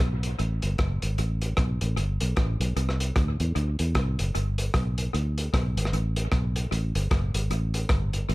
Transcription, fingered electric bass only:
0, 0, Header, 1, 2, 480
1, 0, Start_track
1, 0, Tempo, 394997
1, 1441, Time_signature, 4, 2, 24, 8
1, 10143, End_track
2, 0, Start_track
2, 0, Title_t, "Fingered electric bass"
2, 0, Program_c, 0, 33
2, 0, Note_on_c, 0, 35, 83
2, 408, Note_off_c, 0, 35, 0
2, 482, Note_on_c, 0, 33, 94
2, 725, Note_off_c, 0, 33, 0
2, 772, Note_on_c, 0, 31, 90
2, 934, Note_off_c, 0, 31, 0
2, 961, Note_on_c, 0, 30, 91
2, 1205, Note_off_c, 0, 30, 0
2, 1255, Note_on_c, 0, 32, 86
2, 1416, Note_off_c, 0, 32, 0
2, 1443, Note_on_c, 0, 33, 99
2, 1851, Note_off_c, 0, 33, 0
2, 1921, Note_on_c, 0, 35, 88
2, 2165, Note_off_c, 0, 35, 0
2, 2213, Note_on_c, 0, 33, 88
2, 2376, Note_off_c, 0, 33, 0
2, 2400, Note_on_c, 0, 31, 95
2, 2645, Note_off_c, 0, 31, 0
2, 2692, Note_on_c, 0, 35, 89
2, 2855, Note_off_c, 0, 35, 0
2, 2884, Note_on_c, 0, 33, 101
2, 3128, Note_off_c, 0, 33, 0
2, 3162, Note_on_c, 0, 35, 91
2, 3330, Note_off_c, 0, 35, 0
2, 3358, Note_on_c, 0, 36, 101
2, 3769, Note_off_c, 0, 36, 0
2, 3844, Note_on_c, 0, 38, 93
2, 4088, Note_off_c, 0, 38, 0
2, 4134, Note_on_c, 0, 40, 98
2, 4297, Note_off_c, 0, 40, 0
2, 4325, Note_on_c, 0, 38, 114
2, 4568, Note_off_c, 0, 38, 0
2, 4615, Note_on_c, 0, 40, 94
2, 4778, Note_off_c, 0, 40, 0
2, 4807, Note_on_c, 0, 36, 105
2, 5050, Note_off_c, 0, 36, 0
2, 5101, Note_on_c, 0, 30, 86
2, 5261, Note_off_c, 0, 30, 0
2, 5292, Note_on_c, 0, 31, 99
2, 5696, Note_off_c, 0, 31, 0
2, 5764, Note_on_c, 0, 35, 90
2, 6172, Note_off_c, 0, 35, 0
2, 6249, Note_on_c, 0, 38, 92
2, 6654, Note_off_c, 0, 38, 0
2, 6730, Note_on_c, 0, 35, 94
2, 6971, Note_off_c, 0, 35, 0
2, 7010, Note_on_c, 0, 32, 85
2, 7174, Note_off_c, 0, 32, 0
2, 7206, Note_on_c, 0, 33, 105
2, 7612, Note_off_c, 0, 33, 0
2, 7687, Note_on_c, 0, 35, 87
2, 8092, Note_off_c, 0, 35, 0
2, 8163, Note_on_c, 0, 33, 96
2, 8406, Note_off_c, 0, 33, 0
2, 8451, Note_on_c, 0, 31, 91
2, 8613, Note_off_c, 0, 31, 0
2, 8642, Note_on_c, 0, 30, 96
2, 8884, Note_off_c, 0, 30, 0
2, 8926, Note_on_c, 0, 32, 89
2, 9090, Note_off_c, 0, 32, 0
2, 9120, Note_on_c, 0, 33, 98
2, 9527, Note_off_c, 0, 33, 0
2, 9599, Note_on_c, 0, 31, 85
2, 10006, Note_off_c, 0, 31, 0
2, 10078, Note_on_c, 0, 33, 100
2, 10143, Note_off_c, 0, 33, 0
2, 10143, End_track
0, 0, End_of_file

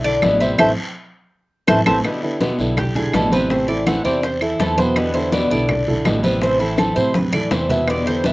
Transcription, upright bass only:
0, 0, Header, 1, 2, 480
1, 0, Start_track
1, 0, Key_signature, 1, "minor"
1, 0, Tempo, 364498
1, 772, Time_signature, 4, 2, 24, 8
1, 10966, End_track
2, 0, Start_track
2, 0, Title_t, "Upright bass"
2, 0, Program_c, 0, 32
2, 0, Note_on_c, 0, 35, 85
2, 238, Note_off_c, 0, 35, 0
2, 292, Note_on_c, 0, 33, 92
2, 738, Note_off_c, 0, 33, 0
2, 772, Note_on_c, 0, 33, 93
2, 951, Note_off_c, 0, 33, 0
2, 2213, Note_on_c, 0, 33, 103
2, 2391, Note_off_c, 0, 33, 0
2, 2453, Note_on_c, 0, 33, 97
2, 2631, Note_off_c, 0, 33, 0
2, 3407, Note_on_c, 0, 35, 87
2, 4079, Note_off_c, 0, 35, 0
2, 4126, Note_on_c, 0, 33, 98
2, 5252, Note_off_c, 0, 33, 0
2, 5329, Note_on_c, 0, 40, 94
2, 6000, Note_off_c, 0, 40, 0
2, 6051, Note_on_c, 0, 40, 102
2, 7174, Note_off_c, 0, 40, 0
2, 7250, Note_on_c, 0, 35, 85
2, 7920, Note_off_c, 0, 35, 0
2, 7971, Note_on_c, 0, 33, 102
2, 9094, Note_off_c, 0, 33, 0
2, 9172, Note_on_c, 0, 45, 78
2, 9841, Note_off_c, 0, 45, 0
2, 9892, Note_on_c, 0, 40, 96
2, 10966, Note_off_c, 0, 40, 0
2, 10966, End_track
0, 0, End_of_file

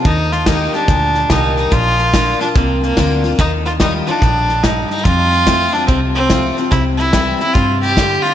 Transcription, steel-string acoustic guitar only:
0, 0, Header, 1, 2, 480
1, 0, Start_track
1, 0, Tempo, 416667
1, 62, Time_signature, 4, 2, 24, 8
1, 9610, End_track
2, 0, Start_track
2, 0, Title_t, "Steel-string acoustic guitar"
2, 0, Program_c, 0, 25
2, 57, Note_on_c, 0, 51, 81
2, 521, Note_off_c, 0, 51, 0
2, 535, Note_on_c, 0, 51, 85
2, 540, Note_on_c, 0, 58, 97
2, 551, Note_on_c, 0, 63, 107
2, 555, Note_on_c, 0, 67, 91
2, 837, Note_off_c, 0, 67, 0
2, 838, Note_off_c, 0, 51, 0
2, 841, Note_off_c, 0, 58, 0
2, 846, Note_off_c, 0, 63, 0
2, 850, Note_on_c, 0, 67, 58
2, 873, Note_on_c, 0, 63, 56
2, 1016, Note_off_c, 0, 67, 0
2, 1025, Note_on_c, 0, 46, 91
2, 1028, Note_off_c, 0, 63, 0
2, 1496, Note_on_c, 0, 51, 84
2, 1506, Note_on_c, 0, 58, 92
2, 1511, Note_on_c, 0, 63, 94
2, 1519, Note_on_c, 0, 67, 88
2, 1953, Note_off_c, 0, 46, 0
2, 1965, Note_off_c, 0, 51, 0
2, 1970, Note_off_c, 0, 58, 0
2, 1973, Note_off_c, 0, 63, 0
2, 1977, Note_off_c, 0, 67, 0
2, 1983, Note_on_c, 0, 46, 92
2, 2461, Note_on_c, 0, 50, 89
2, 2469, Note_on_c, 0, 58, 96
2, 2476, Note_on_c, 0, 62, 107
2, 2484, Note_on_c, 0, 65, 104
2, 2759, Note_off_c, 0, 65, 0
2, 2763, Note_off_c, 0, 50, 0
2, 2767, Note_off_c, 0, 58, 0
2, 2770, Note_off_c, 0, 62, 0
2, 2772, Note_on_c, 0, 65, 74
2, 2792, Note_on_c, 0, 62, 55
2, 2912, Note_off_c, 0, 46, 0
2, 2939, Note_off_c, 0, 65, 0
2, 2946, Note_on_c, 0, 41, 92
2, 2949, Note_off_c, 0, 62, 0
2, 3418, Note_on_c, 0, 50, 79
2, 3426, Note_on_c, 0, 58, 86
2, 3431, Note_on_c, 0, 62, 96
2, 3441, Note_on_c, 0, 65, 93
2, 3718, Note_off_c, 0, 65, 0
2, 3722, Note_off_c, 0, 50, 0
2, 3725, Note_off_c, 0, 58, 0
2, 3728, Note_off_c, 0, 62, 0
2, 3732, Note_on_c, 0, 65, 74
2, 3751, Note_on_c, 0, 62, 46
2, 3874, Note_off_c, 0, 41, 0
2, 3899, Note_off_c, 0, 65, 0
2, 3908, Note_off_c, 0, 62, 0
2, 3910, Note_on_c, 0, 51, 102
2, 4363, Note_off_c, 0, 51, 0
2, 4377, Note_on_c, 0, 51, 99
2, 4387, Note_on_c, 0, 55, 98
2, 4393, Note_on_c, 0, 63, 102
2, 4397, Note_on_c, 0, 65, 103
2, 4676, Note_off_c, 0, 65, 0
2, 4681, Note_off_c, 0, 51, 0
2, 4686, Note_off_c, 0, 55, 0
2, 4689, Note_off_c, 0, 63, 0
2, 4690, Note_on_c, 0, 65, 67
2, 4713, Note_on_c, 0, 63, 53
2, 4858, Note_off_c, 0, 65, 0
2, 4869, Note_off_c, 0, 63, 0
2, 4876, Note_on_c, 0, 45, 87
2, 5335, Note_off_c, 0, 45, 0
2, 5349, Note_on_c, 0, 43, 81
2, 5812, Note_off_c, 0, 43, 0
2, 5823, Note_on_c, 0, 41, 96
2, 6299, Note_on_c, 0, 53, 85
2, 6307, Note_on_c, 0, 57, 91
2, 6312, Note_on_c, 0, 60, 107
2, 6318, Note_on_c, 0, 65, 102
2, 6594, Note_off_c, 0, 65, 0
2, 6601, Note_off_c, 0, 53, 0
2, 6605, Note_off_c, 0, 57, 0
2, 6608, Note_off_c, 0, 60, 0
2, 6608, Note_on_c, 0, 65, 56
2, 6631, Note_on_c, 0, 60, 48
2, 6750, Note_off_c, 0, 41, 0
2, 6775, Note_off_c, 0, 65, 0
2, 6787, Note_off_c, 0, 60, 0
2, 6788, Note_on_c, 0, 48, 92
2, 7259, Note_on_c, 0, 53, 88
2, 7271, Note_on_c, 0, 57, 83
2, 7278, Note_on_c, 0, 60, 87
2, 7284, Note_on_c, 0, 65, 100
2, 7553, Note_off_c, 0, 65, 0
2, 7560, Note_off_c, 0, 53, 0
2, 7566, Note_off_c, 0, 57, 0
2, 7567, Note_on_c, 0, 65, 57
2, 7569, Note_off_c, 0, 60, 0
2, 7590, Note_on_c, 0, 60, 58
2, 7712, Note_off_c, 0, 48, 0
2, 7734, Note_off_c, 0, 65, 0
2, 7746, Note_off_c, 0, 60, 0
2, 7747, Note_on_c, 0, 48, 92
2, 8215, Note_on_c, 0, 52, 105
2, 8223, Note_on_c, 0, 55, 99
2, 8230, Note_on_c, 0, 60, 100
2, 8235, Note_on_c, 0, 64, 97
2, 8516, Note_off_c, 0, 52, 0
2, 8521, Note_off_c, 0, 55, 0
2, 8524, Note_off_c, 0, 60, 0
2, 8524, Note_off_c, 0, 64, 0
2, 8538, Note_on_c, 0, 64, 64
2, 8560, Note_on_c, 0, 60, 50
2, 8670, Note_off_c, 0, 48, 0
2, 8698, Note_off_c, 0, 64, 0
2, 8708, Note_on_c, 0, 48, 87
2, 8710, Note_off_c, 0, 60, 0
2, 9168, Note_off_c, 0, 48, 0
2, 9192, Note_on_c, 0, 50, 89
2, 9610, Note_off_c, 0, 50, 0
2, 9610, End_track
0, 0, End_of_file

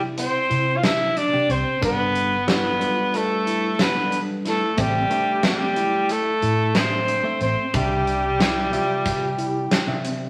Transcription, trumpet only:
0, 0, Header, 1, 2, 480
1, 0, Start_track
1, 0, Tempo, 657174
1, 1335, Time_signature, 9, 3, 24, 8
1, 7519, End_track
2, 0, Start_track
2, 0, Title_t, "Trumpet"
2, 0, Program_c, 0, 56
2, 135, Note_on_c, 0, 72, 93
2, 562, Note_on_c, 0, 77, 78
2, 573, Note_off_c, 0, 72, 0
2, 616, Note_on_c, 0, 76, 102
2, 627, Note_off_c, 0, 77, 0
2, 856, Note_on_c, 0, 74, 89
2, 867, Note_off_c, 0, 76, 0
2, 1102, Note_on_c, 0, 72, 88
2, 1113, Note_off_c, 0, 74, 0
2, 1339, Note_off_c, 0, 72, 0
2, 1346, Note_on_c, 0, 71, 96
2, 1791, Note_off_c, 0, 71, 0
2, 1834, Note_on_c, 0, 71, 83
2, 2315, Note_on_c, 0, 69, 86
2, 2326, Note_off_c, 0, 71, 0
2, 2791, Note_on_c, 0, 71, 97
2, 2802, Note_off_c, 0, 69, 0
2, 3066, Note_off_c, 0, 71, 0
2, 3275, Note_on_c, 0, 69, 88
2, 3505, Note_on_c, 0, 67, 89
2, 3516, Note_off_c, 0, 69, 0
2, 3979, Note_off_c, 0, 67, 0
2, 3986, Note_on_c, 0, 67, 81
2, 4469, Note_on_c, 0, 69, 89
2, 4480, Note_off_c, 0, 67, 0
2, 4938, Note_on_c, 0, 72, 92
2, 4949, Note_off_c, 0, 69, 0
2, 5416, Note_off_c, 0, 72, 0
2, 5420, Note_on_c, 0, 72, 82
2, 5664, Note_on_c, 0, 67, 82
2, 5675, Note_off_c, 0, 72, 0
2, 7340, Note_off_c, 0, 67, 0
2, 7519, End_track
0, 0, End_of_file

